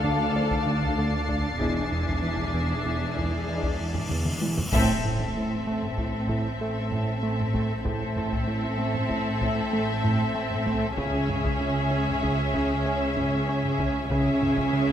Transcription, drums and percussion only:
0.04 taiko medium
0.51 taiko medium
0.82 taiko medium
1.29 taiko medium
1.60 taiko medium
2.07 taiko medium
2.38 taiko medium
3.16 taiko medium
3.63 taiko medium
3.94 taiko low-mid medium
4.09 taiko mid medium
4.25 taiko mid medium
4.42 taiko high medium
4.57 taiko low medium
4.72 taiko medium
5.04 taiko low-mid soft
5.19 taiko medium
5.82 taiko low-mid soft
5.97 taiko medium
6.29 taiko medium
6.91 taiko low-mid soft
7.39 taiko low-mid soft
7.54 taiko medium
7.85 taiko medium
8.17 taiko low-mid medium
8.32 taiko medium
8.95 taiko low-mid soft
9.10 taiko medium
9.41 taiko medium
10.04 taiko low-mid soft
10.51 taiko low-mid soft
10.66 taiko medium
10.97 taiko medium
11.29 taiko low-mid medium
11.45 taiko medium
12.08 taiko low-mid soft
12.23 taiko medium
12.54 taiko medium
13.17 taiko low-mid soft
13.64 taiko low-mid soft
13.79 taiko medium
14.10 taiko medium
14.42 taiko low-mid medium
14.57 taiko medium

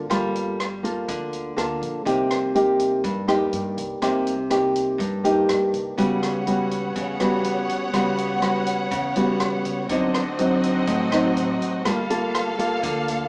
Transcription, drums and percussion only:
0.11 kick medium
0.11 cross-stick medium
0.11 closed hi-hat medium
0.35 closed hi-hat soft
0.60 cross-stick medium
0.60 closed hi-hat soft
0.84 kick soft
0.84 closed hi-hat soft
1.08 kick medium
1.08 closed hi-hat medium
1.33 closed hi-hat soft
1.58 cross-stick medium
1.58 closed hi-hat soft
1.82 kick soft
1.82 closed hi-hat soft
2.06 kick medium
2.06 closed hi-hat soft
2.31 cross-stick medium
2.31 closed hi-hat soft
2.55 closed hi-hat soft
2.79 kick soft
2.79 closed hi-hat soft
3.04 kick medium
3.04 closed hi-hat medium
3.28 cross-stick medium
3.28 closed hi-hat soft
3.53 closed hi-hat soft
3.77 kick soft
3.77 closed hi-hat soft
4.02 kick medium
4.02 cross-stick medium
4.02 closed hi-hat medium
4.27 closed hi-hat soft
4.51 cross-stick medium
4.51 closed hi-hat soft
4.75 kick soft
4.75 closed hi-hat soft
5.00 kick medium
5.00 closed hi-hat medium
5.25 closed hi-hat soft
5.49 cross-stick medium
5.49 closed hi-hat soft
5.74 kick soft
5.74 closed hi-hat soft
5.98 kick medium
5.98 closed hi-hat medium
6.23 cross-stick medium
6.23 closed hi-hat soft
6.47 closed hi-hat soft
6.71 kick soft
6.71 closed hi-hat soft
6.96 kick medium
6.96 closed hi-hat medium
7.20 cross-stick medium
7.20 closed hi-hat soft
7.44 closed hi-hat soft
7.69 kick soft
7.69 closed hi-hat soft
7.94 kick medium
7.94 cross-stick medium
7.94 closed hi-hat medium
8.18 closed hi-hat soft
8.42 cross-stick medium
8.42 closed hi-hat soft
8.66 kick soft
8.66 closed hi-hat soft
8.91 kick medium
8.91 closed hi-hat medium
9.16 closed hi-hat soft
9.40 cross-stick medium
9.40 closed hi-hat soft
9.65 kick soft
9.65 closed hi-hat soft
9.89 kick medium
9.89 closed hi-hat medium
10.14 cross-stick medium
10.14 closed hi-hat soft
10.39 closed hi-hat soft
10.63 kick soft
10.63 closed hi-hat soft
10.87 kick medium
10.87 closed hi-hat medium
11.12 cross-stick medium
11.12 closed hi-hat soft
11.37 closed hi-hat soft
11.61 kick soft
11.61 closed hi-hat soft
11.85 kick medium
11.85 cross-stick medium
11.85 closed hi-hat medium
12.10 closed hi-hat soft
12.35 cross-stick medium
12.35 closed hi-hat soft
12.59 kick soft
12.59 closed hi-hat soft
12.83 kick medium
12.83 closed hi-hat medium
13.08 closed hi-hat soft

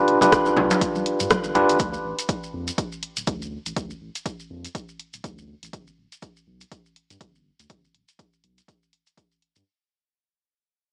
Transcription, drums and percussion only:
0.08 closed hi-hat soft
0.21 closed hi-hat soft
0.21 high conga medium
0.21 djembe tone medium
0.21 low conga loud
0.21 maracas medium
0.32 kick loud
0.32 cross-stick loud
0.32 closed hi-hat medium
0.32 muted conga soft
0.32 maracas medium
0.46 djembe tone medium
0.46 maracas soft
0.56 djembe slap medium
0.56 djembe tone medium
0.56 high conga medium
0.56 djembe bass medium
0.56 low conga loud
0.70 closed hi-hat soft
0.70 muted conga soft
0.70 djembe slap medium
0.70 high conga loud
0.70 maracas medium
0.81 kick loud
0.81 closed hi-hat soft
0.81 maracas medium
0.95 high conga medium
0.95 maracas soft
1.06 closed hi-hat medium
1.20 closed hi-hat soft
1.20 muted conga soft
1.20 maracas medium
1.30 kick loud
1.30 cross-stick loud
1.30 closed hi-hat medium
1.30 high conga loud
1.30 maracas medium
1.44 maracas soft
1.55 closed hi-hat soft
1.55 muted conga medium
1.55 djembe slap medium
1.55 djembe bass medium
1.69 closed hi-hat soft
1.69 maracas medium
1.79 kick loud
1.79 closed hi-hat medium
1.79 maracas medium
1.94 maracas soft
2.19 closed hi-hat soft
2.19 maracas medium
2.29 kick loud
2.29 closed hi-hat medium
2.29 maracas medium
2.43 maracas soft
2.68 closed hi-hat soft
2.68 maracas medium
2.78 kick loud
2.78 closed hi-hat soft
2.78 maracas medium
2.92 maracas soft
3.03 closed hi-hat soft
3.17 closed hi-hat soft
3.17 maracas medium
3.27 kick loud
3.27 closed hi-hat medium
3.27 maracas medium
3.42 maracas soft
3.66 closed hi-hat soft
3.66 maracas medium
3.76 kick loud
3.76 closed hi-hat medium
3.76 maracas medium
3.90 maracas soft
4.15 closed hi-hat soft
4.15 maracas medium
4.26 kick loud
4.26 closed hi-hat medium
4.26 maracas medium
4.40 maracas soft
4.65 closed hi-hat soft
4.65 maracas medium
4.75 kick loud
4.75 closed hi-hat medium
4.75 maracas medium
4.89 maracas soft
5.00 closed hi-hat soft
5.13 closed hi-hat soft
5.13 maracas medium
5.24 kick loud
5.24 closed hi-hat medium
5.24 maracas medium
5.38 maracas soft
5.63 closed hi-hat soft
5.63 maracas medium
5.73 kick loud
5.73 closed hi-hat medium
5.73 maracas medium
5.87 maracas soft
6.12 closed hi-hat soft
6.12 maracas medium
6.22 kick loud
6.22 closed hi-hat medium
6.22 maracas medium
6.37 maracas soft
6.61 closed hi-hat soft
6.61 maracas medium
6.72 kick loud
6.72 closed hi-hat medium
6.72 maracas medium
6.86 maracas soft
6.96 closed hi-hat soft
7.10 closed hi-hat soft
7.10 maracas medium
7.21 kick loud
7.21 closed hi-hat medium
7.21 maracas medium
7.35 maracas soft
7.60 closed hi-hat soft
7.60 maracas medium
7.70 kick loud
7.70 closed hi-hat medium
7.70 maracas medium
7.85 maracas soft
7.95 closed hi-hat soft
8.08 closed hi-hat soft
8.08 maracas medium
8.19 kick loud
8.19 closed hi-hat medium
8.19 maracas medium
8.33 maracas soft
8.44 closed hi-hat soft
8.58 closed hi-hat soft
8.58 maracas medium
8.68 kick loud
8.68 closed hi-hat medium
8.68 maracas medium
8.83 maracas soft
8.93 closed hi-hat medium
9.07 closed hi-hat soft
9.07 maracas medium
9.17 kick loud
9.17 closed hi-hat medium
9.17 maracas medium
9.32 maracas soft
9.42 closed hi-hat soft
9.56 closed hi-hat soft
9.56 maracas medium

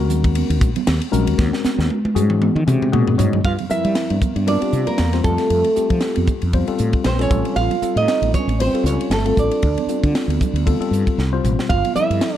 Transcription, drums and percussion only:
0.10 hi-hat pedal medium
0.10 low conga medium
0.24 kick medium
0.24 ride medium
0.35 ride medium
0.35 high conga medium
0.50 ride medium
0.61 kick medium
0.61 hi-hat pedal medium
0.76 ride medium
0.76 high conga medium
0.76 low conga medium
0.87 snare loud
0.87 ride medium
1.01 ride medium
1.13 hi-hat pedal medium
1.13 low conga medium
1.27 ride medium
1.39 kick loud
1.39 snare medium
1.53 snare medium
1.64 snare medium
1.64 hi-hat pedal medium
1.64 high conga medium
1.80 snare medium
1.90 high tom medium
2.05 high tom medium
2.16 hi-hat pedal medium
2.16 high tom medium
2.16 low conga medium
2.30 mid tom medium
2.42 mid tom medium
2.42 high conga medium
2.56 mid tom medium
2.68 hi-hat pedal medium
2.68 mid tom medium
2.82 mid tom medium
2.82 high conga medium
2.93 mid tom loud
2.93 high conga medium
3.07 floor tom medium
3.07 high conga medium
3.19 floor tom medium
3.19 hi-hat pedal medium
3.19 low conga medium
3.33 floor tom medium
3.33 low conga medium
3.45 kick medium
3.45 ride medium
3.58 ride medium
3.58 high conga medium
3.58 low conga medium
3.70 hi-hat pedal medium
3.85 ride medium
3.95 snare medium
3.95 ride medium
4.10 ride medium
4.10 high conga medium
4.22 kick medium
4.22 hi-hat pedal medium
4.22 high conga medium
4.22 low conga medium
4.36 ride soft
4.36 high conga medium
4.47 ride medium
4.47 high conga medium
4.62 ride medium
4.73 hi-hat pedal medium
4.87 ride soft
4.98 snare loud
4.98 ride medium
5.13 snare soft
5.13 ride medium
5.24 kick medium
5.24 hi-hat pedal medium
5.24 low conga medium
5.38 snare soft
5.38 ride medium
5.50 ride medium
5.64 ride medium
5.64 low conga soft
5.76 hi-hat pedal medium
5.90 kick medium
5.90 ride medium
6.01 snare medium
6.01 ride medium
6.16 ride medium
6.16 high conga medium
6.27 kick medium
6.27 hi-hat pedal medium
6.27 high conga soft
6.27 low conga medium
6.42 ride soft
6.42 high conga medium
6.53 kick medium
6.53 ride medium
6.53 high conga medium
6.67 ride soft
6.78 hi-hat pedal medium
6.93 kick medium
6.93 ride soft
7.04 snare loud
7.04 ride medium
7.19 ride soft
7.31 kick loud
7.31 hi-hat pedal medium
7.31 low conga medium
7.45 ride medium
7.56 ride medium
7.71 ride soft
7.71 high conga medium
7.71 low conga soft
7.82 hi-hat pedal medium
7.97 ride medium
8.08 snare medium
8.08 ride medium
8.23 ride medium
8.23 high conga medium
8.34 kick medium
8.34 hi-hat pedal medium
8.34 high conga medium
8.34 low conga medium
8.48 ride soft
8.48 high conga medium
8.60 ride medium
8.60 high conga medium
8.75 ride soft
8.86 hi-hat pedal medium
9.01 ride medium
9.11 snare loud
9.11 ride medium
9.26 ride medium
9.37 kick medium
9.37 hi-hat pedal medium
9.37 low conga medium
9.51 ride medium
9.63 kick medium
9.63 ride medium
9.78 ride medium
9.78 high conga medium
9.78 low conga soft
9.89 hi-hat pedal medium
10.04 kick medium
10.04 ride medium
10.15 snare medium
10.15 ride medium
10.30 ride soft
10.30 high conga medium
10.41 kick medium
10.41 hi-hat pedal medium
10.41 high conga medium
10.41 low conga medium
10.56 ride medium
10.56 high conga medium
10.67 kick medium
10.67 ride medium
10.67 high conga soft
10.82 ride soft
10.93 hi-hat pedal medium
11.07 kick medium
11.07 ride soft
11.19 snare medium
11.45 hi-hat pedal medium
11.45 mid tom medium
11.45 low conga medium
11.59 snare medium
11.70 kick medium
11.70 ride medium
11.84 ride soft
11.84 high conga medium
11.84 low conga soft
11.95 hi-hat pedal medium
12.11 ride medium
12.21 snare medium
12.21 ride medium

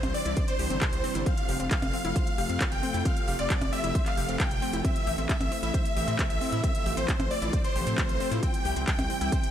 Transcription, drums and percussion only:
0.03 closed hi-hat medium
0.03 percussion blips medium
0.14 open hi-hat loud
0.26 closed hi-hat medium
0.37 kick loud
0.37 closed hi-hat medium
0.48 closed hi-hat medium
0.59 open hi-hat loud
0.70 closed hi-hat medium
0.81 kick loud
0.81 clap loud
0.81 closed hi-hat medium
0.93 closed hi-hat medium
1.04 open hi-hat loud
1.15 closed hi-hat medium
1.26 kick loud
1.26 closed hi-hat medium
1.37 closed hi-hat medium
1.49 open hi-hat loud
1.60 closed hi-hat medium
1.71 kick loud
1.71 clap loud
1.71 closed hi-hat medium
1.82 closed hi-hat soft
1.82 percussion blips medium
1.93 open hi-hat loud
2.05 closed hi-hat soft
2.16 kick loud
2.16 closed hi-hat medium
2.27 closed hi-hat medium
2.38 open hi-hat loud
2.49 closed hi-hat medium
2.61 kick loud
2.61 clap loud
2.61 closed hi-hat medium
2.72 closed hi-hat medium
2.83 open hi-hat loud
2.94 closed hi-hat soft
3.05 kick loud
3.05 closed hi-hat medium
3.17 closed hi-hat medium
3.28 open hi-hat loud
3.39 closed hi-hat medium
3.50 kick loud
3.50 clap loud
3.50 closed hi-hat medium
3.61 closed hi-hat medium
3.61 percussion blips medium
3.73 open hi-hat loud
3.84 closed hi-hat medium
3.95 kick loud
3.95 closed hi-hat medium
4.06 clap soft
4.06 closed hi-hat medium
4.17 open hi-hat loud
4.29 closed hi-hat soft
4.40 kick loud
4.40 clap loud
4.40 closed hi-hat medium
4.51 closed hi-hat medium
4.62 open hi-hat medium
4.73 closed hi-hat medium
4.85 kick loud
4.85 closed hi-hat medium
4.96 closed hi-hat medium
5.07 open hi-hat loud
5.18 closed hi-hat soft
5.29 kick loud
5.29 clap loud
5.29 closed hi-hat medium
5.41 closed hi-hat medium
5.41 percussion blips medium
5.52 open hi-hat loud
5.63 closed hi-hat soft
5.74 kick loud
5.74 closed hi-hat medium
5.85 closed hi-hat medium
5.97 open hi-hat loud
6.08 closed hi-hat medium
6.19 kick loud
6.19 clap loud
6.19 closed hi-hat medium
6.30 closed hi-hat medium
6.41 open hi-hat medium
6.52 closed hi-hat medium
6.64 kick loud
6.64 closed hi-hat medium
6.75 closed hi-hat medium
6.86 open hi-hat loud
6.97 closed hi-hat medium
7.08 kick loud
7.08 clap loud
7.08 closed hi-hat medium
7.20 closed hi-hat medium
7.20 percussion blips medium
7.31 open hi-hat medium
7.42 closed hi-hat medium
7.53 kick loud
7.53 closed hi-hat medium
7.64 closed hi-hat medium
7.76 open hi-hat loud
7.87 closed hi-hat medium
7.98 kick loud
7.98 clap loud
7.98 closed hi-hat medium
8.09 closed hi-hat medium
8.20 open hi-hat medium
8.32 closed hi-hat medium
8.43 kick loud
8.43 closed hi-hat medium
8.54 closed hi-hat medium
8.65 open hi-hat loud
8.76 closed hi-hat medium
8.87 kick loud
8.87 clap loud
8.87 closed hi-hat medium
8.99 closed hi-hat medium
8.99 percussion blips medium
9.10 open hi-hat loud
9.21 closed hi-hat medium
9.32 kick loud
9.32 closed hi-hat medium
9.43 closed hi-hat medium

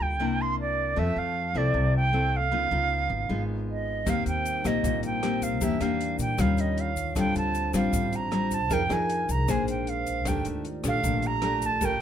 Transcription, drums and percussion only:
4.07 kick medium
4.07 cross-stick soft
4.07 closed hi-hat medium
4.07 shaker medium
4.26 closed hi-hat soft
4.26 shaker soft
4.45 closed hi-hat soft
4.45 shaker medium
4.65 kick soft
4.65 cross-stick medium
4.65 closed hi-hat soft
4.65 shaker medium
4.84 kick medium
4.84 closed hi-hat medium
4.84 shaker medium
5.03 closed hi-hat soft
5.03 shaker soft
5.23 cross-stick medium
5.23 closed hi-hat soft
5.42 kick soft
5.42 closed hi-hat soft
5.42 shaker medium
5.61 kick medium
5.61 closed hi-hat medium
5.61 shaker medium
5.81 cross-stick soft
5.81 closed hi-hat soft
5.81 shaker soft
6.01 closed hi-hat soft
6.19 kick soft
6.19 closed hi-hat soft
6.19 shaker medium
6.38 kick medium
6.38 cross-stick medium
6.38 closed hi-hat medium
6.38 shaker medium
6.57 closed hi-hat soft
6.57 shaker soft
6.78 closed hi-hat soft
6.96 kick soft
6.96 closed hi-hat soft
6.96 shaker medium
7.16 kick medium
7.16 cross-stick soft
7.16 closed hi-hat medium
7.16 shaker medium
7.35 closed hi-hat soft
7.35 shaker soft
7.55 closed hi-hat soft
7.55 shaker medium
7.74 kick soft
7.74 cross-stick medium
7.74 closed hi-hat soft
7.74 shaker medium
7.93 kick medium
7.93 closed hi-hat medium
7.93 shaker medium
8.13 closed hi-hat soft
8.13 shaker soft
8.32 cross-stick medium
8.32 closed hi-hat soft
8.51 kick soft
8.51 closed hi-hat soft
8.51 shaker medium
8.70 kick medium
8.70 closed hi-hat medium
8.70 shaker medium
8.90 cross-stick medium
8.90 closed hi-hat soft
8.90 shaker soft
9.10 closed hi-hat soft
9.29 kick soft
9.29 closed hi-hat soft
9.29 shaker medium
9.48 kick medium
9.48 cross-stick medium
9.48 closed hi-hat medium
9.48 shaker medium
9.68 closed hi-hat soft
9.68 shaker soft
9.87 closed hi-hat soft
10.06 kick soft
10.06 closed hi-hat soft
10.06 shaker medium
10.25 kick medium
10.25 cross-stick medium
10.25 closed hi-hat medium
10.25 shaker medium
10.45 closed hi-hat soft
10.45 shaker soft
10.65 closed hi-hat soft
10.84 kick soft
10.84 cross-stick medium
10.84 closed hi-hat soft
10.84 shaker medium
11.04 kick medium
11.04 closed hi-hat medium
11.04 shaker medium
11.22 closed hi-hat soft
11.22 shaker soft
11.42 cross-stick medium
11.42 closed hi-hat soft
11.62 kick soft
11.62 closed hi-hat soft
11.62 shaker soft
11.81 kick medium
11.81 closed hi-hat soft
11.81 shaker medium

